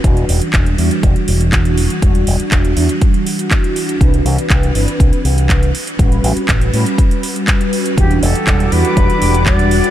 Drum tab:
HH |xxoxxxoxxxoxxxox|xxoxxxoxxxoxxxox|xxoxxxoxxxoxxxox|xxoxxxoxxxoxxxox|
CP |----x-------x---|----x-------x---|----x-------x---|----x-------x---|
BD |o---o---o---o---|o---o---o---o---|o---o---o---o---|o---o---o---o---|

HH |xxoxxxoxxxoxxxox|
CP |----x-------x---|
BD |o---o---o---o---|